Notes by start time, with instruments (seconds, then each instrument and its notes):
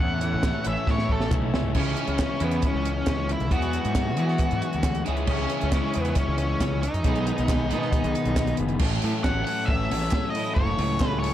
Already playing: clean electric guitar E3 A3 C#4 E4, transistor combo organ A3 E4 C#5 E5, lead electric guitar F#5
0.00 picked electric bass E2, overdriven electric guitar A2 E3 A3 C#4 E4, clean electric guitar A2, kick
0.21 clean electric guitar E3, overdriven electric guitar A3 C#4 E4, closed hi-hat
0.34 picked electric bass A1
0.43 overdriven electric guitar E3 A3 C#4 E4, clean electric guitar A3, kick, snare, clap
0.64 picked electric bass A1, clean electric guitar C#4, lead electric guitar E5, closed hi-hat
0.87 overdriven electric guitar A2 E3 A3 C#4 E4, picked electric bass A2, clean electric guitar E4, lead electric guitar C#5, kick, snare
0.98 snare
1.09 picked electric bass A1, clean electric guitar A3, overdriven electric guitar C#4 E4, lead electric guitar A4, kick
1.13 overdriven electric guitar A3
1.20 snare
1.30 picked electric bass B1, overdriven electric guitar E3 A3 C#4 E4, clean electric guitar C#4, kick, clap, mid tom
1.42 mid tom
1.53 picked electric bass C#2, clean electric guitar A3, overdriven electric guitar A3 C#4 E4, snare
1.63 floor tom
1.74 picked electric bass C#2, overdriven electric guitar C#3 E3 G#3 C#4 E4, clean electric guitar C#3 G#3 C#4, lead electric guitar C#4, kick, crash
1.78 clean electric guitar E4
1.96 closed hi-hat
2.07 picked electric bass C#2, closed hi-hat
2.19 lead electric guitar C#4, kick, snare, clap, closed hi-hat
2.40 picked electric bass E2, clean electric guitar C#3 G#3 C#4 E4, lead electric guitar B3, closed hi-hat
2.51 closed hi-hat
2.62 kick, clap, closed hi-hat
2.67 lead electric guitar C#4
2.75 picked electric bass C#2
2.85 closed hi-hat
3.07 picked electric bass C#2, lead electric guitar C#4, kick, snare, clap, closed hi-hat
3.29 lead electric guitar E4, closed hi-hat
3.40 picked electric bass B1, closed hi-hat
3.51 overdriven electric guitar E2 B2 E3 G#3 B3 E4, picked electric bass E2, clean electric guitar E3 F#3 B3 E4 G#4, lead electric guitar F#4, kick, closed hi-hat
3.62 closed hi-hat
3.73 closed hi-hat
3.85 picked electric bass G#2, closed hi-hat
3.95 kick, snare, clap, closed hi-hat
4.17 picked electric bass E3, clean electric guitar E3 F#3 B3 E4 G#4, closed hi-hat
4.28 snare
4.39 kick, clap, closed hi-hat
4.51 picked electric bass G#2, closed hi-hat
4.62 closed hi-hat
4.73 picked electric bass D2, closed hi-hat
4.83 kick, snare, clap, closed hi-hat
4.95 closed hi-hat
5.04 picked electric bass C#2, clean electric guitar C#3 G#3 C#4 E4 G#4, overdriven electric guitar C#3 E3 G#3, closed hi-hat
5.09 overdriven electric guitar C#4 E4
5.17 closed hi-hat
5.27 picked electric bass C#2, lead electric guitar C#4, transistor combo organ G#4 C#5 E5 C#6, kick, crash
5.50 closed hi-hat
5.61 picked electric bass C#2, closed hi-hat
5.72 clean electric guitar C#3 G#3 C#4 E4 G#4, lead electric guitar C#4, kick, snare, clap, closed hi-hat
5.94 picked electric bass E2, lead electric guitar B3, closed hi-hat
6.05 closed hi-hat
6.10 lead electric guitar B3
6.15 lead electric guitar C#4, kick, clap, closed hi-hat
6.28 picked electric bass C#2
6.38 lead electric guitar C#4, closed hi-hat
6.61 picked electric bass C#2, kick, snare, clap, closed hi-hat
6.83 lead electric guitar D#4, closed hi-hat
6.94 picked electric bass F#2, closed hi-hat
7.04 picked electric bass B1, clean electric guitar B2 D#3 G#3 B3 D#4 G#4, overdriven electric guitar B2 D#3 G#3 B3 G#4, transistor combo organ B4 D#5 B5, kick, closed hi-hat
7.15 closed hi-hat
7.27 closed hi-hat
7.38 picked electric bass B1, closed hi-hat
7.48 kick, snare, clap, closed hi-hat
7.70 picked electric bass B2, clean electric guitar B2 D#3 G#3 B3 D#4 G#4, closed hi-hat
7.82 snare
7.92 kick, clap, closed hi-hat
8.04 picked electric bass B1, closed hi-hat
8.15 closed hi-hat
8.25 picked electric bass B1, closed hi-hat
8.36 kick, snare, clap, closed hi-hat
8.47 closed hi-hat
8.57 picked electric bass F#1, closed hi-hat
8.69 closed hi-hat
8.79 picked electric bass A1, clean electric guitar A2, overdriven electric guitar A2 E3 A3 C#4, kick, crash
8.84 overdriven electric guitar A4
9.02 picked electric bass A2, clean electric guitar F#3, overdriven electric guitar C#4 A4, open hi-hat
9.06 overdriven electric guitar A3
9.24 picked electric bass A1, overdriven electric guitar E3 A3 C#4 A4, clean electric guitar C#4, lead electric guitar F#5, kick, snare, clap
9.45 clean electric guitar F#3, overdriven electric guitar A3 C#4 A4, lead electric guitar F#5, open hi-hat
9.49 overdriven electric guitar A2 E3
9.65 picked electric bass A1, clean electric guitar A2, lead electric guitar E5, kick
9.70 overdriven electric guitar E3 A3 C#4 A4
9.91 picked electric bass A1, overdriven electric guitar A2 E3 A3 C#4 A4, clean electric guitar C#4, snare, open hi-hat
10.01 snare
10.11 overdriven electric guitar E3 A3, clean electric guitar F#3, kick, snare, clap
10.15 overdriven electric guitar C#4 A4
10.30 lead electric guitar D#5
10.35 overdriven electric guitar C#4 A4, clean electric guitar E4, open hi-hat
10.40 overdriven electric guitar A3
10.55 picked electric bass F#1, overdriven electric guitar A2 E3 A3, clean electric guitar A2, lead electric guitar C#5, kick
10.59 overdriven electric guitar C#4 A4
10.78 picked electric bass C#2, clean electric guitar F#3, overdriven electric guitar A3 C#4 A4, open hi-hat
11.00 picked electric bass C#2, overdriven electric guitar E3 A3 C#4 A4, clean electric guitar C#4, kick, snare, clap
11.19 clean electric guitar F#3, overdriven electric guitar A4, lead electric guitar C#5
11.23 overdriven electric guitar A2 E3 A3 C#4, open hi-hat